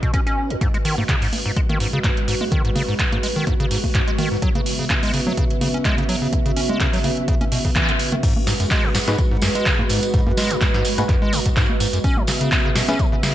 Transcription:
Already playing: C#4 F#4 B4 D#5
0.03 B2, kick, closed hi-hat
0.14 C#4, kick, closed hi-hat
0.27 C#4, closed hi-hat
0.50 C#2, closed hi-hat
0.61 G#2 G#3 F#4 B4, kick, closed hi-hat, high conga
0.74 G#3, closed hi-hat
0.85 D#3, open hi-hat
0.98 G#2, high conga
1.09 C#3, kick, clap, closed hi-hat
1.22 G#2, open hi-hat
1.33 open hi-hat, high conga
1.46 G#2
1.56 G#3, kick, closed hi-hat
1.69 D#3, closed hi-hat, high conga
1.80 G#2, open hi-hat
1.93 C#3, closed hi-hat
2.04 G#2, kick, clap, closed hi-hat, high conga
2.17 closed hi-hat
2.28 G#2, open hi-hat
2.41 G#3, high conga
2.52 D#3, kick, closed hi-hat
2.65 G#2, closed hi-hat
2.75 C#3, open hi-hat, high conga
2.88 G#2
2.99 kick, clap, closed hi-hat
3.12 G#2, closed hi-hat, high conga
3.23 G#3, open hi-hat
3.36 D#3
3.47 G#2, kick, closed hi-hat, high conga
3.60 C#3, closed hi-hat
3.71 G#2, open hi-hat
3.84 kick, open hi-hat, high conga
3.95 G#2, kick, clap, closed hi-hat
4.08 G#3, closed hi-hat
4.18 D#3, open hi-hat, high conga
4.31 G#2
4.42 C#3 F#3 B3 C#4 E5, kick, closed hi-hat
4.55 C#3, closed hi-hat, high conga
4.66 open hi-hat
4.79 C#3
4.90 C#4, kick, clap, closed hi-hat, high conga
5.03 G#3, open hi-hat
5.14 C#3, open hi-hat
5.23 F#3 E5, high conga
5.37 C#3, kick, closed hi-hat
5.50 closed hi-hat
5.61 C#3, open hi-hat, high conga
5.74 C#4, closed hi-hat
5.85 G#3, kick, clap, closed hi-hat
5.98 C#3, closed hi-hat, high conga
6.09 F#3, open hi-hat
6.22 C#3
6.33 kick, closed hi-hat, high conga
6.46 C#3, closed hi-hat
6.56 C#4, open hi-hat
6.69 G#3, closed hi-hat, high conga
6.80 C#3, kick, clap, closed hi-hat
6.93 F#3, open hi-hat
7.04 C#3, open hi-hat, high conga
7.17 closed hi-hat
7.28 C#3, kick, closed hi-hat
7.41 C#4, closed hi-hat, high conga
7.52 B2, open hi-hat
7.65 C#3, kick, open hi-hat
7.76 E3, kick, clap, closed hi-hat, high conga
7.89 C#3, closed hi-hat
7.99 open hi-hat
8.12 D#3, closed hi-hat, high conga
8.23 G#2 G#3 F#4 B4, kick, closed hi-hat, crash, tambourine
8.36 high conga
8.47 G#2 D#5, snare, open hi-hat, tambourine
8.60 F#2, closed hi-hat, tambourine
8.70 G#3, kick, clap, closed hi-hat, tambourine, high conga
8.84 B2
8.95 G#2, snare, open hi-hat, tambourine
9.08 G#2 G#3 D#4 F#4 B4, snare, closed hi-hat, tambourine, high conga
9.18 kick, closed hi-hat, tambourine
9.31 G#2
9.42 F#2, snare, open hi-hat, tambourine, high conga
9.55 G#3, closed hi-hat, tambourine
9.66 B2, kick, clap, closed hi-hat, tambourine
9.79 G#2, high conga
9.89 G#2, open hi-hat, tambourine
10.03 closed hi-hat, tambourine
10.14 G#2, kick, closed hi-hat, tambourine
10.27 F#2, high conga
10.37 G#3, snare, open hi-hat, tambourine
10.51 B2, closed hi-hat, tambourine
10.61 G#2, kick, clap, closed hi-hat, tambourine, high conga
10.74 G#2, snare
10.85 open hi-hat, tambourine
10.98 G#2 G#3 D#4 F#4 B4, closed hi-hat, tambourine, high conga
11.09 F#2, kick, clap, closed hi-hat, tambourine
11.22 G#3
11.33 B2, open hi-hat, tambourine, high conga
11.46 G#2, kick, closed hi-hat, tambourine
11.57 G#2, kick, clap, closed hi-hat, tambourine
11.69 high conga
11.80 G#2, open hi-hat, tambourine
11.93 F#2, closed hi-hat, tambourine
12.04 C#3 B3 C#4 E5, kick, closed hi-hat, tambourine
12.17 E3, high conga
12.27 C#3, snare, open hi-hat, tambourine
12.41 C#3, closed hi-hat, tambourine
12.52 kick, clap, closed hi-hat, tambourine, high conga
12.65 C#3
12.76 B2, snare, open hi-hat, tambourine
12.88 C#4 G#4 B4 E5, snare, closed hi-hat, tambourine, high conga
12.99 E3, kick, closed hi-hat, tambourine
13.12 C#3
13.23 C#3, snare, open hi-hat, tambourine, high conga

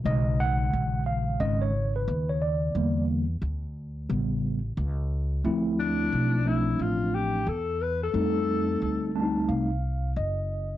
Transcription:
0.04 B1 C#3 D#3 G#3 D#5
0.40 F#5
0.73 A#1
1.06 F5
1.40 G#1 D#3 G#3 C#4 D#5
1.61 C#5
1.96 B4
2.08 D#2
2.29 C#5
2.42 D5
2.75 E2 D3 G3 A#3
3.42 D2
4.09 A1 C#3 G3 B3
4.77 C#2
5.44 D2 F3 A3 C4 E4
5.80 D4
6.12 B1
6.45 F3 A3 C4 D4 E4
6.79 A1 F4
7.15 G4
7.47 E2 A4
7.82 B4
8.03 A4
8.14 F2 G3 A3 C4 D#4
8.82 D2
9.15 G3 A3 C4 D4 A5
9.22 D#4
9.49 C2 F5
10.16 F#1 D#5

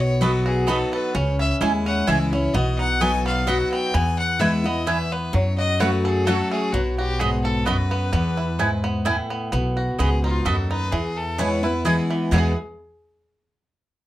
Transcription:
Already playing: B1 B2 B3
0.00 C#5
0.21 F#3 B3 D#4 F#4 A4 B4 D#5 B5
0.46 F#4 G#4
0.67 F#3 B3 D#4 F#4 A4 D#5 B5
0.93 A4 B4
1.14 C#2 C#3 C#4 C#5
1.39 C#4 E5
1.61 D#2 G#3 C#4 E4 G#4 E5 G#5
1.86 C#4 F#5
2.07 C#2 E3 G#3 C#4 E4 G#4 E5 G#5
2.32 C#4 E4 C#5
2.54 B1 B2 B3 D#5
2.78 D#4 F#5
3.00 F#3 B3 D#4 F#4 A4 D#5 G#5 B5
3.26 B3 F5
3.47 F#3 B3 D#4 F#4 D#5 F#5 B5
3.72 B3 G5
3.94 E2 B3 G#5
4.19 F#5
4.39 E3 G#3 B3 E4 B4 E5 G#5
4.64 B3 E4 D#5
4.86 E2 B3 E4 B4 E5 G#5
5.12 B3 B4
5.33 F#2 F#3 C#5
5.58 F#4 D#5
5.80 F#3 A3 C#4 F#4 B4 C#5 F#5
6.05 G#4 A4
6.26 F#3 A3 C#4 F#4 A4 C#5 F#5
6.51 A3 G#4
6.72 B1 B2 F#3 F#4
6.98 F#4 G4
7.19 G#2 B3 F#4 G#4 D#5 B5
7.43 A4
7.65 F#2 B3 F#4 B4 D#5 B5
7.91 B3
8.13 E2 B3
8.37 E4
8.59 G#2 B3 E4 B4 G#5
8.84 B3
9.05 A2 B3 E4 B4 G#5
9.30 B3
9.52 B1 B2 B3
9.77 F#4
9.98 C#2 G#2 B3 F#4 G#4 D#5 B5
10.24 D#4 F4
10.45 D#2 F#2 B3 F#4 A4 D#5 B5
10.71 D#4 B4
10.92 E2 E3 G#4
11.17 A4
11.38 E3 G#3 B3 E4 B4 C#5 G#5
11.63 B3 E4 B4
11.85 E3 G#3 B3 E4 G#4 B4 G#5
12.10 E3
12.31 E2 B2 E3 G#3 B3 E4 G#4 B4 G#5
12.36 E4 G#4

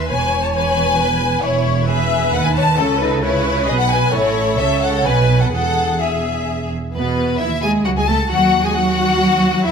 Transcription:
0.08 E1 E2 B4 C#5 G#5
0.43 C#5 A5
0.54 B4 G#5
0.98 B4
1.43 E1 E2 E4 C#5
1.88 G#4 B4 E5
2.33 D#2 D#3 B4 F#5
2.44 B4 G#5
2.55 C#5 A5
2.77 C#2 C#3 C#4 A4
3.00 D#4 B4
3.22 E4 B4 C#5
3.67 B1 B2 G#4 D#5
3.79 A4 F#5
3.87 B4 G#5
4.13 A1 A2 E4 A4 C#5
4.58 C#2 C#3 A4 C#5 E5
4.81 A4 F#5
5.05 B1 B2 B4 G#5
5.41 A4 F#5
5.53 E1 E2 G#4 A4 F#5
6.00 G#4 E5
6.93 E2 B2 B3 B4
7.38 D#2 E3 E4 E5
7.62 G#3 G#4 G#5
7.85 C#2 F#3 F#4 F#5
7.97 G#3 G#4 G#5
8.08 A3 A4 A5
8.29 D#2 F#3 F#4 F#5
8.63 G#3 G#4 G#5
8.72 F#3 F#4 F#5
9.64 E2 E3 E4 E5

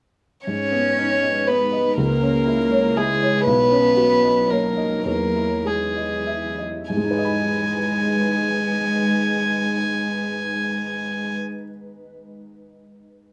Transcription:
0.46 G#2 G#3 C#4 D#4 B4 C#5
0.72 B3
0.97 D#4
1.23 D#5
1.47 B3 B4
1.72 D#5
1.97 C#2 A#3 E4 A#4 C#5
2.22 C#4
2.47 E4
2.72 C#5
2.96 G#3 E4 G#4
3.22 C#5
3.46 B1 F#3 B3 D#4 B4
3.71 C#4
3.97 F#4
4.23 D#5
4.50 A#3 A#4 C#5
4.77 D#5
5.05 E2 E3 A#3 E4 A#4
5.36 E4
5.65 G#3 G#4
5.96 D#5
6.27 E5
6.58 D#5
6.90 G#2 G#3 D#4 B4 G#5
6.97 G#3
7.04 D#4
7.11 B4
7.18 D#5
7.25 B5

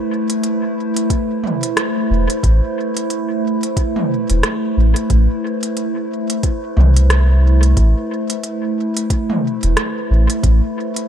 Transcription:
Already playing: A3 E4 B4 C5
0.30 closed hi-hat
0.43 closed hi-hat
0.96 closed hi-hat
1.10 kick, closed hi-hat
1.44 mid tom
1.63 closed hi-hat
1.77 cross-stick, closed hi-hat
2.10 E1
2.30 closed hi-hat
2.43 A1, kick, closed hi-hat
2.97 closed hi-hat
3.10 closed hi-hat
3.63 closed hi-hat
3.77 kick, closed hi-hat
3.96 mid tom
4.30 E1, closed hi-hat
4.43 cross-stick, closed hi-hat
4.77 A1
4.96 closed hi-hat
5.10 A1, kick, closed hi-hat
5.63 closed hi-hat
5.77 closed hi-hat
6.30 closed hi-hat
6.43 kick, closed hi-hat
6.77 C2, mid tom
6.96 closed hi-hat
7.10 cross-stick, closed hi-hat
7.63 closed hi-hat
7.77 A1, kick, closed hi-hat
8.30 closed hi-hat
8.44 closed hi-hat
8.97 closed hi-hat
9.10 kick, closed hi-hat
9.30 mid tom
9.63 E1, closed hi-hat
9.77 cross-stick, closed hi-hat
10.10 A1
10.30 closed hi-hat
10.43 A1, kick, closed hi-hat
10.96 closed hi-hat

